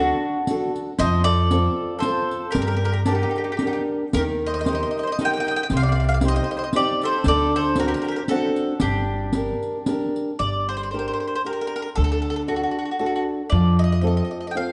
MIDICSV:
0, 0, Header, 1, 6, 480
1, 0, Start_track
1, 0, Key_signature, -2, "minor"
1, 0, Tempo, 521739
1, 911, Time_signature, 3, 2, 24, 8
1, 13543, End_track
2, 0, Start_track
2, 0, Title_t, "Mandolin"
2, 0, Program_c, 0, 25
2, 0, Note_on_c, 0, 66, 73
2, 651, Note_off_c, 0, 66, 0
2, 914, Note_on_c, 0, 75, 123
2, 1138, Note_off_c, 0, 75, 0
2, 1142, Note_on_c, 0, 74, 108
2, 1812, Note_off_c, 0, 74, 0
2, 1842, Note_on_c, 0, 72, 84
2, 2314, Note_off_c, 0, 72, 0
2, 2317, Note_on_c, 0, 70, 100
2, 2397, Note_off_c, 0, 70, 0
2, 2408, Note_on_c, 0, 70, 71
2, 2452, Note_off_c, 0, 70, 0
2, 2463, Note_on_c, 0, 70, 75
2, 2533, Note_off_c, 0, 70, 0
2, 2544, Note_on_c, 0, 70, 52
2, 2613, Note_off_c, 0, 70, 0
2, 2624, Note_on_c, 0, 70, 79
2, 2691, Note_off_c, 0, 70, 0
2, 2700, Note_on_c, 0, 70, 61
2, 2759, Note_off_c, 0, 70, 0
2, 2830, Note_on_c, 0, 67, 57
2, 2884, Note_off_c, 0, 67, 0
2, 2895, Note_on_c, 0, 67, 43
2, 2959, Note_off_c, 0, 67, 0
2, 2970, Note_on_c, 0, 67, 45
2, 3032, Note_off_c, 0, 67, 0
2, 3043, Note_on_c, 0, 67, 34
2, 3097, Note_off_c, 0, 67, 0
2, 3108, Note_on_c, 0, 67, 37
2, 3155, Note_off_c, 0, 67, 0
2, 3166, Note_on_c, 0, 67, 36
2, 3228, Note_off_c, 0, 67, 0
2, 3238, Note_on_c, 0, 67, 47
2, 3274, Note_off_c, 0, 67, 0
2, 3285, Note_on_c, 0, 67, 39
2, 3361, Note_off_c, 0, 67, 0
2, 3377, Note_on_c, 0, 67, 53
2, 3419, Note_off_c, 0, 67, 0
2, 3430, Note_on_c, 0, 67, 44
2, 3510, Note_off_c, 0, 67, 0
2, 3812, Note_on_c, 0, 70, 91
2, 3883, Note_off_c, 0, 70, 0
2, 4108, Note_on_c, 0, 75, 84
2, 4146, Note_off_c, 0, 75, 0
2, 4176, Note_on_c, 0, 75, 68
2, 4211, Note_off_c, 0, 75, 0
2, 4240, Note_on_c, 0, 75, 68
2, 4275, Note_off_c, 0, 75, 0
2, 4310, Note_on_c, 0, 75, 48
2, 4346, Note_off_c, 0, 75, 0
2, 4367, Note_on_c, 0, 75, 58
2, 4415, Note_off_c, 0, 75, 0
2, 4442, Note_on_c, 0, 75, 52
2, 4490, Note_off_c, 0, 75, 0
2, 4516, Note_on_c, 0, 75, 50
2, 4564, Note_off_c, 0, 75, 0
2, 4591, Note_on_c, 0, 75, 53
2, 4628, Note_off_c, 0, 75, 0
2, 4667, Note_on_c, 0, 75, 51
2, 4697, Note_off_c, 0, 75, 0
2, 4712, Note_on_c, 0, 75, 65
2, 4750, Note_off_c, 0, 75, 0
2, 4830, Note_on_c, 0, 79, 92
2, 4871, Note_off_c, 0, 79, 0
2, 4908, Note_on_c, 0, 79, 58
2, 4948, Note_off_c, 0, 79, 0
2, 4969, Note_on_c, 0, 79, 74
2, 5015, Note_off_c, 0, 79, 0
2, 5043, Note_on_c, 0, 79, 72
2, 5083, Note_off_c, 0, 79, 0
2, 5118, Note_on_c, 0, 79, 82
2, 5149, Note_off_c, 0, 79, 0
2, 5181, Note_on_c, 0, 79, 70
2, 5211, Note_off_c, 0, 79, 0
2, 5306, Note_on_c, 0, 77, 108
2, 5348, Note_off_c, 0, 77, 0
2, 5367, Note_on_c, 0, 77, 75
2, 5415, Note_off_c, 0, 77, 0
2, 5448, Note_on_c, 0, 77, 67
2, 5492, Note_off_c, 0, 77, 0
2, 5518, Note_on_c, 0, 77, 56
2, 5558, Note_off_c, 0, 77, 0
2, 5600, Note_on_c, 0, 77, 84
2, 5627, Note_off_c, 0, 77, 0
2, 5649, Note_on_c, 0, 77, 66
2, 5681, Note_off_c, 0, 77, 0
2, 5780, Note_on_c, 0, 75, 97
2, 5822, Note_off_c, 0, 75, 0
2, 5850, Note_on_c, 0, 75, 72
2, 5893, Note_off_c, 0, 75, 0
2, 5924, Note_on_c, 0, 75, 60
2, 5967, Note_off_c, 0, 75, 0
2, 5989, Note_on_c, 0, 75, 56
2, 6030, Note_off_c, 0, 75, 0
2, 6060, Note_on_c, 0, 75, 60
2, 6093, Note_off_c, 0, 75, 0
2, 6107, Note_on_c, 0, 75, 54
2, 6146, Note_off_c, 0, 75, 0
2, 6221, Note_on_c, 0, 74, 104
2, 6451, Note_off_c, 0, 74, 0
2, 6488, Note_on_c, 0, 72, 90
2, 6692, Note_off_c, 0, 72, 0
2, 6699, Note_on_c, 0, 74, 104
2, 6927, Note_off_c, 0, 74, 0
2, 6954, Note_on_c, 0, 72, 89
2, 7143, Note_off_c, 0, 72, 0
2, 7171, Note_on_c, 0, 70, 89
2, 7228, Note_off_c, 0, 70, 0
2, 7251, Note_on_c, 0, 70, 64
2, 7295, Note_off_c, 0, 70, 0
2, 7306, Note_on_c, 0, 70, 67
2, 7364, Note_off_c, 0, 70, 0
2, 7375, Note_on_c, 0, 70, 61
2, 7426, Note_off_c, 0, 70, 0
2, 7437, Note_on_c, 0, 70, 57
2, 7493, Note_off_c, 0, 70, 0
2, 7509, Note_on_c, 0, 70, 54
2, 7560, Note_off_c, 0, 70, 0
2, 7626, Note_on_c, 0, 69, 82
2, 8073, Note_off_c, 0, 69, 0
2, 8107, Note_on_c, 0, 67, 82
2, 9047, Note_off_c, 0, 67, 0
2, 9559, Note_on_c, 0, 74, 97
2, 9828, Note_off_c, 0, 74, 0
2, 9831, Note_on_c, 0, 72, 79
2, 9890, Note_off_c, 0, 72, 0
2, 9906, Note_on_c, 0, 72, 65
2, 9955, Note_off_c, 0, 72, 0
2, 9966, Note_on_c, 0, 72, 55
2, 10019, Note_off_c, 0, 72, 0
2, 10036, Note_on_c, 0, 72, 47
2, 10091, Note_off_c, 0, 72, 0
2, 10109, Note_on_c, 0, 72, 62
2, 10168, Note_off_c, 0, 72, 0
2, 10190, Note_on_c, 0, 72, 53
2, 10233, Note_off_c, 0, 72, 0
2, 10244, Note_on_c, 0, 72, 57
2, 10294, Note_off_c, 0, 72, 0
2, 10305, Note_on_c, 0, 72, 46
2, 10362, Note_off_c, 0, 72, 0
2, 10373, Note_on_c, 0, 72, 54
2, 10430, Note_off_c, 0, 72, 0
2, 10446, Note_on_c, 0, 72, 63
2, 10497, Note_off_c, 0, 72, 0
2, 10547, Note_on_c, 0, 70, 75
2, 10594, Note_off_c, 0, 70, 0
2, 10605, Note_on_c, 0, 70, 54
2, 10674, Note_off_c, 0, 70, 0
2, 10684, Note_on_c, 0, 70, 59
2, 10727, Note_off_c, 0, 70, 0
2, 10738, Note_on_c, 0, 70, 65
2, 10808, Note_off_c, 0, 70, 0
2, 10818, Note_on_c, 0, 70, 70
2, 10865, Note_off_c, 0, 70, 0
2, 10876, Note_on_c, 0, 70, 54
2, 10936, Note_off_c, 0, 70, 0
2, 10998, Note_on_c, 0, 69, 90
2, 11065, Note_off_c, 0, 69, 0
2, 11076, Note_on_c, 0, 69, 66
2, 11136, Note_off_c, 0, 69, 0
2, 11147, Note_on_c, 0, 69, 67
2, 11221, Note_off_c, 0, 69, 0
2, 11241, Note_on_c, 0, 69, 53
2, 11299, Note_off_c, 0, 69, 0
2, 11316, Note_on_c, 0, 69, 71
2, 11360, Note_off_c, 0, 69, 0
2, 11371, Note_on_c, 0, 69, 60
2, 11422, Note_off_c, 0, 69, 0
2, 11485, Note_on_c, 0, 66, 64
2, 11546, Note_off_c, 0, 66, 0
2, 11557, Note_on_c, 0, 66, 49
2, 11612, Note_off_c, 0, 66, 0
2, 11623, Note_on_c, 0, 66, 42
2, 11684, Note_off_c, 0, 66, 0
2, 11696, Note_on_c, 0, 66, 36
2, 11752, Note_off_c, 0, 66, 0
2, 11763, Note_on_c, 0, 66, 41
2, 11814, Note_off_c, 0, 66, 0
2, 11825, Note_on_c, 0, 66, 34
2, 11869, Note_off_c, 0, 66, 0
2, 11880, Note_on_c, 0, 66, 45
2, 11942, Note_off_c, 0, 66, 0
2, 11953, Note_on_c, 0, 66, 36
2, 12006, Note_off_c, 0, 66, 0
2, 12017, Note_on_c, 0, 66, 45
2, 12089, Note_off_c, 0, 66, 0
2, 12104, Note_on_c, 0, 66, 47
2, 12169, Note_off_c, 0, 66, 0
2, 12416, Note_on_c, 0, 74, 89
2, 12684, Note_off_c, 0, 74, 0
2, 12687, Note_on_c, 0, 75, 75
2, 12720, Note_off_c, 0, 75, 0
2, 12731, Note_on_c, 0, 75, 55
2, 12800, Note_off_c, 0, 75, 0
2, 12810, Note_on_c, 0, 75, 62
2, 12871, Note_off_c, 0, 75, 0
2, 12893, Note_on_c, 0, 75, 47
2, 12933, Note_off_c, 0, 75, 0
2, 12944, Note_on_c, 0, 75, 52
2, 13015, Note_off_c, 0, 75, 0
2, 13035, Note_on_c, 0, 75, 51
2, 13095, Note_off_c, 0, 75, 0
2, 13106, Note_on_c, 0, 75, 41
2, 13153, Note_off_c, 0, 75, 0
2, 13164, Note_on_c, 0, 75, 37
2, 13226, Note_off_c, 0, 75, 0
2, 13253, Note_on_c, 0, 75, 39
2, 13302, Note_off_c, 0, 75, 0
2, 13314, Note_on_c, 0, 75, 45
2, 13350, Note_on_c, 0, 79, 51
2, 13363, Note_off_c, 0, 75, 0
2, 13400, Note_off_c, 0, 79, 0
2, 13404, Note_on_c, 0, 77, 78
2, 13543, Note_off_c, 0, 77, 0
2, 13543, End_track
3, 0, Start_track
3, 0, Title_t, "Mandolin"
3, 0, Program_c, 1, 25
3, 0, Note_on_c, 1, 62, 56
3, 655, Note_off_c, 1, 62, 0
3, 906, Note_on_c, 1, 72, 94
3, 1140, Note_off_c, 1, 72, 0
3, 1144, Note_on_c, 1, 69, 84
3, 1813, Note_off_c, 1, 69, 0
3, 1827, Note_on_c, 1, 69, 78
3, 2288, Note_off_c, 1, 69, 0
3, 2306, Note_on_c, 1, 67, 68
3, 2367, Note_off_c, 1, 67, 0
3, 2378, Note_on_c, 1, 67, 56
3, 2444, Note_off_c, 1, 67, 0
3, 2455, Note_on_c, 1, 67, 58
3, 2534, Note_off_c, 1, 67, 0
3, 2545, Note_on_c, 1, 67, 47
3, 2606, Note_off_c, 1, 67, 0
3, 2617, Note_on_c, 1, 67, 58
3, 2678, Note_off_c, 1, 67, 0
3, 2689, Note_on_c, 1, 67, 53
3, 2748, Note_off_c, 1, 67, 0
3, 2814, Note_on_c, 1, 62, 68
3, 2886, Note_off_c, 1, 62, 0
3, 2899, Note_on_c, 1, 63, 42
3, 2951, Note_off_c, 1, 63, 0
3, 2962, Note_on_c, 1, 63, 41
3, 3020, Note_off_c, 1, 63, 0
3, 3031, Note_on_c, 1, 63, 37
3, 3087, Note_off_c, 1, 63, 0
3, 3098, Note_on_c, 1, 63, 38
3, 3152, Note_off_c, 1, 63, 0
3, 3163, Note_on_c, 1, 63, 37
3, 3227, Note_off_c, 1, 63, 0
3, 3237, Note_on_c, 1, 63, 41
3, 3290, Note_off_c, 1, 63, 0
3, 3301, Note_on_c, 1, 63, 34
3, 3370, Note_off_c, 1, 63, 0
3, 3384, Note_on_c, 1, 63, 43
3, 3439, Note_off_c, 1, 63, 0
3, 3450, Note_on_c, 1, 63, 34
3, 3521, Note_off_c, 1, 63, 0
3, 3833, Note_on_c, 1, 67, 74
3, 3901, Note_off_c, 1, 67, 0
3, 4115, Note_on_c, 1, 72, 70
3, 4150, Note_off_c, 1, 72, 0
3, 4179, Note_on_c, 1, 72, 46
3, 4213, Note_off_c, 1, 72, 0
3, 4223, Note_on_c, 1, 72, 60
3, 4265, Note_off_c, 1, 72, 0
3, 4276, Note_on_c, 1, 72, 50
3, 4328, Note_off_c, 1, 72, 0
3, 4350, Note_on_c, 1, 72, 56
3, 4399, Note_off_c, 1, 72, 0
3, 4410, Note_on_c, 1, 72, 46
3, 4469, Note_off_c, 1, 72, 0
3, 4480, Note_on_c, 1, 72, 44
3, 4545, Note_off_c, 1, 72, 0
3, 4577, Note_on_c, 1, 72, 44
3, 4621, Note_off_c, 1, 72, 0
3, 4630, Note_on_c, 1, 72, 63
3, 4678, Note_off_c, 1, 72, 0
3, 4796, Note_on_c, 1, 75, 76
3, 4853, Note_off_c, 1, 75, 0
3, 4877, Note_on_c, 1, 75, 60
3, 4931, Note_off_c, 1, 75, 0
3, 4941, Note_on_c, 1, 75, 65
3, 5000, Note_off_c, 1, 75, 0
3, 5009, Note_on_c, 1, 75, 54
3, 5059, Note_off_c, 1, 75, 0
3, 5070, Note_on_c, 1, 75, 78
3, 5121, Note_off_c, 1, 75, 0
3, 5132, Note_on_c, 1, 75, 70
3, 5184, Note_off_c, 1, 75, 0
3, 5274, Note_on_c, 1, 72, 78
3, 5331, Note_off_c, 1, 72, 0
3, 5360, Note_on_c, 1, 74, 67
3, 5405, Note_off_c, 1, 74, 0
3, 5416, Note_on_c, 1, 74, 63
3, 5466, Note_off_c, 1, 74, 0
3, 5477, Note_on_c, 1, 74, 53
3, 5536, Note_off_c, 1, 74, 0
3, 5558, Note_on_c, 1, 74, 68
3, 5604, Note_off_c, 1, 74, 0
3, 5628, Note_on_c, 1, 74, 56
3, 5670, Note_off_c, 1, 74, 0
3, 5751, Note_on_c, 1, 72, 70
3, 5806, Note_off_c, 1, 72, 0
3, 5837, Note_on_c, 1, 72, 64
3, 5886, Note_off_c, 1, 72, 0
3, 5914, Note_on_c, 1, 72, 52
3, 5961, Note_off_c, 1, 72, 0
3, 5995, Note_on_c, 1, 72, 47
3, 6033, Note_off_c, 1, 72, 0
3, 6043, Note_on_c, 1, 72, 68
3, 6084, Note_off_c, 1, 72, 0
3, 6104, Note_on_c, 1, 72, 67
3, 6145, Note_off_c, 1, 72, 0
3, 6227, Note_on_c, 1, 67, 71
3, 6454, Note_off_c, 1, 67, 0
3, 6471, Note_on_c, 1, 69, 92
3, 6663, Note_off_c, 1, 69, 0
3, 6697, Note_on_c, 1, 69, 86
3, 6926, Note_off_c, 1, 69, 0
3, 6960, Note_on_c, 1, 69, 83
3, 7146, Note_off_c, 1, 69, 0
3, 7178, Note_on_c, 1, 66, 82
3, 7231, Note_off_c, 1, 66, 0
3, 7247, Note_on_c, 1, 67, 64
3, 7303, Note_off_c, 1, 67, 0
3, 7332, Note_on_c, 1, 67, 60
3, 7382, Note_off_c, 1, 67, 0
3, 7402, Note_on_c, 1, 67, 49
3, 7449, Note_off_c, 1, 67, 0
3, 7467, Note_on_c, 1, 67, 64
3, 7509, Note_off_c, 1, 67, 0
3, 7527, Note_on_c, 1, 67, 48
3, 7569, Note_off_c, 1, 67, 0
3, 7642, Note_on_c, 1, 66, 66
3, 8082, Note_off_c, 1, 66, 0
3, 8124, Note_on_c, 1, 62, 69
3, 9056, Note_off_c, 1, 62, 0
3, 13543, End_track
4, 0, Start_track
4, 0, Title_t, "Nylon-string guitar"
4, 0, Program_c, 2, 24
4, 0, Note_on_c, 2, 62, 48
4, 0, Note_on_c, 2, 66, 44
4, 0, Note_on_c, 2, 69, 50
4, 343, Note_off_c, 2, 62, 0
4, 344, Note_off_c, 2, 66, 0
4, 348, Note_off_c, 2, 69, 0
4, 450, Note_on_c, 2, 62, 46
4, 461, Note_on_c, 2, 66, 41
4, 467, Note_on_c, 2, 69, 51
4, 824, Note_off_c, 2, 62, 0
4, 831, Note_off_c, 2, 66, 0
4, 834, Note_off_c, 2, 69, 0
4, 933, Note_on_c, 2, 53, 65
4, 1384, Note_off_c, 2, 53, 0
4, 1391, Note_on_c, 2, 60, 45
4, 1396, Note_on_c, 2, 65, 36
4, 1401, Note_on_c, 2, 69, 48
4, 1771, Note_off_c, 2, 60, 0
4, 1774, Note_off_c, 2, 65, 0
4, 1777, Note_off_c, 2, 69, 0
4, 1877, Note_on_c, 2, 60, 40
4, 1882, Note_on_c, 2, 65, 39
4, 1882, Note_on_c, 2, 69, 58
4, 2254, Note_off_c, 2, 60, 0
4, 2255, Note_off_c, 2, 65, 0
4, 2257, Note_off_c, 2, 69, 0
4, 2342, Note_on_c, 2, 55, 60
4, 2806, Note_off_c, 2, 55, 0
4, 2820, Note_on_c, 2, 62, 37
4, 2828, Note_on_c, 2, 67, 45
4, 2832, Note_on_c, 2, 70, 46
4, 3208, Note_off_c, 2, 62, 0
4, 3213, Note_off_c, 2, 67, 0
4, 3215, Note_off_c, 2, 70, 0
4, 3320, Note_on_c, 2, 62, 48
4, 3327, Note_on_c, 2, 67, 44
4, 3330, Note_on_c, 2, 70, 47
4, 3707, Note_off_c, 2, 62, 0
4, 3711, Note_off_c, 2, 67, 0
4, 3712, Note_off_c, 2, 70, 0
4, 3822, Note_on_c, 2, 51, 54
4, 4285, Note_off_c, 2, 51, 0
4, 4295, Note_on_c, 2, 63, 38
4, 4298, Note_on_c, 2, 67, 39
4, 4308, Note_on_c, 2, 70, 43
4, 4679, Note_off_c, 2, 63, 0
4, 4679, Note_off_c, 2, 67, 0
4, 4687, Note_off_c, 2, 70, 0
4, 4779, Note_on_c, 2, 63, 45
4, 4783, Note_on_c, 2, 67, 43
4, 4789, Note_on_c, 2, 70, 47
4, 5160, Note_off_c, 2, 63, 0
4, 5161, Note_off_c, 2, 67, 0
4, 5162, Note_off_c, 2, 70, 0
4, 5264, Note_on_c, 2, 48, 71
4, 5716, Note_off_c, 2, 48, 0
4, 5726, Note_on_c, 2, 60, 47
4, 5730, Note_on_c, 2, 63, 37
4, 5735, Note_on_c, 2, 67, 49
4, 6103, Note_off_c, 2, 60, 0
4, 6106, Note_off_c, 2, 63, 0
4, 6108, Note_off_c, 2, 67, 0
4, 6206, Note_on_c, 2, 60, 49
4, 6211, Note_on_c, 2, 63, 43
4, 6217, Note_on_c, 2, 67, 56
4, 6581, Note_off_c, 2, 60, 0
4, 6583, Note_off_c, 2, 63, 0
4, 6587, Note_off_c, 2, 67, 0
4, 6684, Note_on_c, 2, 50, 76
4, 7138, Note_off_c, 2, 50, 0
4, 7155, Note_on_c, 2, 60, 48
4, 7157, Note_on_c, 2, 62, 39
4, 7163, Note_on_c, 2, 66, 48
4, 7533, Note_off_c, 2, 62, 0
4, 7534, Note_off_c, 2, 60, 0
4, 7538, Note_off_c, 2, 66, 0
4, 7643, Note_on_c, 2, 60, 49
4, 7647, Note_on_c, 2, 62, 48
4, 7650, Note_on_c, 2, 66, 48
4, 8021, Note_off_c, 2, 60, 0
4, 8024, Note_off_c, 2, 62, 0
4, 8024, Note_off_c, 2, 66, 0
4, 8118, Note_on_c, 2, 55, 68
4, 8584, Note_off_c, 2, 55, 0
4, 8593, Note_on_c, 2, 62, 47
4, 8598, Note_on_c, 2, 70, 45
4, 8600, Note_on_c, 2, 67, 39
4, 8986, Note_off_c, 2, 62, 0
4, 8988, Note_off_c, 2, 70, 0
4, 8990, Note_off_c, 2, 67, 0
4, 9083, Note_on_c, 2, 62, 44
4, 9089, Note_on_c, 2, 67, 40
4, 9097, Note_on_c, 2, 70, 46
4, 9473, Note_off_c, 2, 62, 0
4, 9476, Note_off_c, 2, 67, 0
4, 9481, Note_off_c, 2, 70, 0
4, 9566, Note_on_c, 2, 55, 56
4, 10036, Note_off_c, 2, 55, 0
4, 10059, Note_on_c, 2, 62, 38
4, 10063, Note_on_c, 2, 67, 30
4, 10067, Note_on_c, 2, 70, 47
4, 10441, Note_off_c, 2, 62, 0
4, 10442, Note_off_c, 2, 67, 0
4, 10445, Note_off_c, 2, 70, 0
4, 10529, Note_on_c, 2, 62, 43
4, 10536, Note_on_c, 2, 70, 39
4, 10542, Note_on_c, 2, 67, 40
4, 10913, Note_off_c, 2, 62, 0
4, 10915, Note_off_c, 2, 70, 0
4, 10920, Note_off_c, 2, 67, 0
4, 11014, Note_on_c, 2, 50, 61
4, 11473, Note_off_c, 2, 50, 0
4, 11479, Note_on_c, 2, 62, 42
4, 11485, Note_on_c, 2, 66, 39
4, 11490, Note_on_c, 2, 69, 39
4, 11859, Note_off_c, 2, 62, 0
4, 11863, Note_off_c, 2, 66, 0
4, 11864, Note_off_c, 2, 69, 0
4, 11954, Note_on_c, 2, 62, 49
4, 11959, Note_on_c, 2, 66, 38
4, 11967, Note_on_c, 2, 69, 45
4, 12335, Note_off_c, 2, 62, 0
4, 12338, Note_off_c, 2, 66, 0
4, 12343, Note_off_c, 2, 69, 0
4, 12437, Note_on_c, 2, 53, 61
4, 12898, Note_on_c, 2, 60, 49
4, 12900, Note_off_c, 2, 53, 0
4, 12911, Note_on_c, 2, 65, 34
4, 12915, Note_on_c, 2, 69, 52
4, 13291, Note_off_c, 2, 60, 0
4, 13299, Note_off_c, 2, 65, 0
4, 13301, Note_off_c, 2, 69, 0
4, 13386, Note_on_c, 2, 65, 41
4, 13391, Note_on_c, 2, 60, 47
4, 13398, Note_on_c, 2, 69, 42
4, 13543, Note_off_c, 2, 60, 0
4, 13543, Note_off_c, 2, 65, 0
4, 13543, Note_off_c, 2, 69, 0
4, 13543, End_track
5, 0, Start_track
5, 0, Title_t, "Upright bass"
5, 0, Program_c, 3, 32
5, 0, Note_on_c, 3, 38, 101
5, 101, Note_off_c, 3, 38, 0
5, 915, Note_on_c, 3, 41, 114
5, 1533, Note_off_c, 3, 41, 0
5, 2341, Note_on_c, 3, 43, 84
5, 2968, Note_off_c, 3, 43, 0
5, 3808, Note_on_c, 3, 39, 94
5, 4437, Note_off_c, 3, 39, 0
5, 5254, Note_on_c, 3, 36, 93
5, 5868, Note_off_c, 3, 36, 0
5, 6674, Note_on_c, 3, 38, 111
5, 7292, Note_off_c, 3, 38, 0
5, 8103, Note_on_c, 3, 31, 90
5, 8740, Note_off_c, 3, 31, 0
5, 9566, Note_on_c, 3, 31, 88
5, 10192, Note_off_c, 3, 31, 0
5, 11016, Note_on_c, 3, 38, 103
5, 11630, Note_off_c, 3, 38, 0
5, 12438, Note_on_c, 3, 41, 113
5, 13063, Note_off_c, 3, 41, 0
5, 13543, End_track
6, 0, Start_track
6, 0, Title_t, "Riq"
6, 435, Note_on_c, 9, 54, 54
6, 527, Note_off_c, 9, 54, 0
6, 696, Note_on_c, 9, 54, 24
6, 788, Note_off_c, 9, 54, 0
6, 907, Note_on_c, 9, 54, 64
6, 999, Note_off_c, 9, 54, 0
6, 1387, Note_on_c, 9, 54, 58
6, 1479, Note_off_c, 9, 54, 0
6, 1861, Note_on_c, 9, 54, 60
6, 1953, Note_off_c, 9, 54, 0
6, 2127, Note_on_c, 9, 54, 21
6, 2219, Note_off_c, 9, 54, 0
6, 2344, Note_on_c, 9, 54, 56
6, 2436, Note_off_c, 9, 54, 0
6, 2811, Note_on_c, 9, 54, 55
6, 2903, Note_off_c, 9, 54, 0
6, 3086, Note_on_c, 9, 54, 17
6, 3178, Note_off_c, 9, 54, 0
6, 3300, Note_on_c, 9, 54, 50
6, 3392, Note_off_c, 9, 54, 0
6, 3802, Note_on_c, 9, 54, 66
6, 3894, Note_off_c, 9, 54, 0
6, 4288, Note_on_c, 9, 54, 56
6, 4380, Note_off_c, 9, 54, 0
6, 4772, Note_on_c, 9, 54, 52
6, 4864, Note_off_c, 9, 54, 0
6, 5029, Note_on_c, 9, 54, 20
6, 5121, Note_off_c, 9, 54, 0
6, 5242, Note_on_c, 9, 54, 58
6, 5334, Note_off_c, 9, 54, 0
6, 5715, Note_on_c, 9, 54, 62
6, 5807, Note_off_c, 9, 54, 0
6, 6189, Note_on_c, 9, 54, 54
6, 6281, Note_off_c, 9, 54, 0
6, 6453, Note_on_c, 9, 54, 22
6, 6545, Note_off_c, 9, 54, 0
6, 6663, Note_on_c, 9, 54, 64
6, 6755, Note_off_c, 9, 54, 0
6, 7136, Note_on_c, 9, 54, 64
6, 7228, Note_off_c, 9, 54, 0
6, 7619, Note_on_c, 9, 54, 51
6, 7711, Note_off_c, 9, 54, 0
6, 7877, Note_on_c, 9, 54, 24
6, 7969, Note_off_c, 9, 54, 0
6, 8094, Note_on_c, 9, 54, 68
6, 8186, Note_off_c, 9, 54, 0
6, 8580, Note_on_c, 9, 54, 53
6, 8672, Note_off_c, 9, 54, 0
6, 8855, Note_on_c, 9, 54, 16
6, 8947, Note_off_c, 9, 54, 0
6, 9074, Note_on_c, 9, 54, 53
6, 9166, Note_off_c, 9, 54, 0
6, 9346, Note_on_c, 9, 54, 21
6, 9438, Note_off_c, 9, 54, 0
6, 13543, End_track
0, 0, End_of_file